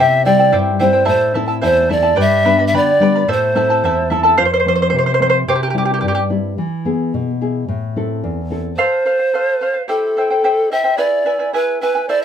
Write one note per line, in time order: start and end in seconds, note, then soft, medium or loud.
0.00 0.52 C3 medium
0.00 0.25 E4 medium
0.00 0.26 G4 medium
0.00 0.25 C5 medium
0.00 0.24 E5 medium
0.00 0.25 E5 medium
0.00 0.25 G5 medium
0.25 0.70 G3 soft
0.25 0.70 C4 soft
0.25 0.70 E4 medium
0.25 0.39 E4 medium
0.25 0.39 C5 medium
0.25 0.56 D5 medium
0.25 0.39 E5 medium
0.25 0.38 G5 medium
0.39 0.51 E4 soft
0.39 0.52 C5 soft
0.39 0.52 G5 medium
0.52 1.06 G2 medium
0.52 0.78 E4 medium
0.52 0.80 G4 medium
0.52 0.78 C5 medium
0.52 0.78 E5 medium
0.52 0.79 G5 medium
0.79 1.03 G3 soft
0.79 1.03 C4 soft
0.79 0.93 E4 medium
0.79 1.03 E4 soft
0.79 0.92 C5 medium
0.79 1.07 C5 medium
0.79 0.94 E5 medium
0.79 0.92 G5 medium
0.93 1.05 E4 soft
0.93 1.04 C5 soft
0.93 1.05 G5 soft
1.05 1.61 A2 medium
1.05 1.33 E4 medium
1.05 1.34 A4 medium
1.05 1.34 C5 medium
1.05 1.33 E5 medium
1.05 1.34 A5 medium
1.34 1.79 A3 soft
1.34 1.80 C4 soft
1.34 1.48 E4 medium
1.34 1.80 E4 medium
1.34 1.47 A4 medium
1.34 1.49 E5 medium
1.34 1.46 A5 medium
1.48 1.62 E4 soft
1.48 1.62 A4 soft
1.48 1.62 A5 soft
1.61 2.17 E2 medium
1.61 1.89 E4 medium
1.61 1.89 A4 medium
1.61 1.90 C5 medium
1.61 1.89 C5 medium
1.61 1.88 E5 medium
1.61 1.89 A5 medium
1.89 2.12 A3 medium
1.89 2.12 C4 soft
1.89 2.03 E4 medium
1.89 2.13 E4 medium
1.89 2.02 A4 medium
1.89 2.17 D5 medium
1.89 2.04 E5 medium
1.89 2.02 A5 medium
2.03 2.16 E4 soft
2.03 2.17 A4 soft
2.03 2.17 A5 medium
2.16 2.71 G2 medium
2.16 2.45 G4 medium
2.16 2.44 B4 medium
2.16 2.44 D5 medium
2.16 2.44 G5 medium
2.16 2.45 B5 medium
2.21 2.67 E5 loud
2.45 2.89 G3 soft
2.45 2.89 B3 soft
2.45 2.90 D4 medium
2.45 2.59 B4 medium
2.45 2.59 D5 medium
2.45 2.59 G5 medium
2.45 2.57 B5 medium
2.59 2.73 B4 soft
2.59 2.73 D5 soft
2.59 2.73 B5 medium
2.67 2.78 E5 medium
2.73 3.27 D3 medium
2.73 3.01 G4 medium
2.73 3.00 B4 medium
2.73 3.01 D5 medium
2.73 3.30 D5 medium
2.73 3.00 G5 medium
2.73 3.01 B5 medium
3.00 3.22 G3 soft
3.00 3.22 B3 soft
3.00 3.22 D4 medium
3.00 3.15 B4 medium
3.00 3.15 D5 medium
3.00 3.15 G5 medium
3.00 3.14 B5 medium
3.16 3.28 B4 soft
3.16 3.28 D5 soft
3.16 3.28 B5 soft
3.28 3.81 A2 medium
3.28 3.55 E4 medium
3.28 3.55 A4 medium
3.28 3.56 C5 medium
3.28 3.54 E5 medium
3.28 3.56 A5 medium
3.33 4.09 C5 medium
3.55 3.99 A3 soft
3.55 3.99 C4 soft
3.55 4.00 E4 medium
3.55 3.69 E4 medium
3.55 3.69 A4 medium
3.55 3.69 E5 medium
3.55 3.69 A5 medium
3.70 3.84 E4 soft
3.70 3.84 A4 soft
3.70 3.83 A5 medium
3.83 4.36 E2 medium
3.83 4.10 E4 medium
3.83 4.10 A4 medium
3.83 4.11 C5 medium
3.83 4.09 E5 medium
3.83 4.11 A5 medium
4.10 4.33 A3 soft
4.10 4.33 C4 soft
4.10 4.24 E4 medium
4.10 4.33 E4 medium
4.10 4.23 A4 medium
4.10 4.24 E5 medium
4.10 4.22 A5 medium
4.23 4.38 E4 soft
4.23 4.38 A4 soft
4.23 4.38 A5 soft
4.38 4.92 F2 medium
4.38 4.45 F4 medium
4.38 4.44 C5 medium
4.45 4.52 C5 medium
4.54 4.59 C5 medium
4.60 4.67 C5 medium
4.65 5.09 F3 soft
4.65 5.10 A3 soft
4.65 5.10 C4 soft
4.65 4.74 C5 medium
4.76 4.81 C5 medium
4.82 4.89 C5 medium
4.90 5.46 C3 medium
4.90 4.97 C5 medium
4.99 5.05 C5 medium
5.06 5.13 C5 medium
5.14 5.21 C5 medium
5.19 5.42 F3 soft
5.19 5.42 A3 soft
5.19 5.42 C4 soft
5.19 5.28 C5 medium
5.30 5.37 C5 medium
5.48 6.01 C3 medium
5.48 5.54 G4 medium
5.48 5.56 C5 medium
5.56 5.62 G4 soft
5.63 5.69 G4 medium
5.70 6.19 G3 soft
5.70 6.19 C4 soft
5.70 5.77 G4 soft
5.75 6.19 E4 soft
5.75 5.84 G4 medium
5.85 5.92 G4 soft
5.94 6.00 G4 soft
6.01 6.56 G2 medium
6.01 6.07 G4 soft
6.08 6.14 G4 medium
6.15 6.22 G4 soft
6.29 6.52 G3 soft
6.29 6.52 C4 soft
6.29 6.52 E4 soft
6.58 7.12 E3 medium
6.85 7.29 B3 soft
6.85 7.30 E4 soft
6.85 7.30 G#4 soft
7.14 7.67 B2 medium
7.41 7.63 B3 soft
7.41 7.63 E4 soft
7.41 7.63 G#4 soft
7.68 8.22 A2 medium
7.96 8.40 C4 soft
7.96 8.40 E4 soft
7.96 8.41 A4 soft
8.24 8.77 E2 medium
8.50 8.72 C4 soft
8.50 8.73 E4 soft
8.50 8.73 A4 soft
8.76 9.05 A4 medium
8.76 9.83 C5 medium
8.76 9.05 C5 medium
8.76 9.05 F5 medium
9.06 9.19 A4 medium
9.06 9.19 C5 medium
9.06 9.18 F5 medium
9.19 9.33 C5 soft
9.19 9.33 F5 soft
9.34 9.60 A4 medium
9.34 9.60 C5 medium
9.34 9.61 F5 medium
9.61 9.75 A4 soft
9.61 9.73 C5 medium
9.61 9.73 F5 medium
9.74 9.88 C5 soft
9.74 9.88 F5 soft
9.88 10.16 E4 medium
9.88 10.16 G4 medium
9.88 10.73 A4 medium
9.88 10.16 C5 medium
9.88 10.16 E5 medium
9.88 10.16 G5 medium
10.17 10.30 E4 medium
10.17 10.30 C5 medium
10.17 10.30 E5 soft
10.17 10.29 G5 medium
10.30 10.43 E4 soft
10.30 10.44 C5 soft
10.30 10.43 G5 soft
10.44 10.70 E4 medium
10.44 10.71 G4 medium
10.44 10.71 C5 medium
10.44 10.70 E5 medium
10.44 10.71 G5 medium
10.71 10.84 E4 soft
10.71 10.83 C5 medium
10.71 10.85 E5 soft
10.71 10.99 E5 medium
10.71 10.83 G5 medium
10.84 10.97 E4 soft
10.84 10.98 C5 soft
10.84 10.98 G5 soft
10.97 11.25 E4 medium
10.97 11.25 G#4 medium
10.97 11.25 B4 medium
10.97 11.53 D5 medium
10.97 11.24 E5 medium
10.97 11.26 G#5 medium
11.25 11.39 E4 medium
11.25 11.38 B4 medium
11.25 11.39 E5 medium
11.25 11.38 G#5 medium
11.39 11.53 E4 soft
11.39 11.53 B4 soft
11.39 11.53 G#5 soft
11.53 11.81 E4 medium
11.53 11.81 G#4 medium
11.53 11.79 B4 medium
11.53 11.81 B4 medium
11.53 11.81 E5 medium
11.53 11.81 G#5 medium
11.81 11.95 E4 soft
11.81 12.06 B4 medium
11.81 11.95 B4 soft
11.81 11.95 E5 soft
11.81 11.94 G#5 medium
11.95 12.08 E4 soft
11.95 12.09 B4 soft
11.95 12.08 G#5 soft
12.09 12.25 E4 medium
12.09 12.25 A4 medium
12.09 12.25 C5 medium
12.09 12.24 D5 medium
12.09 12.25 E5 medium
12.09 12.25 A5 medium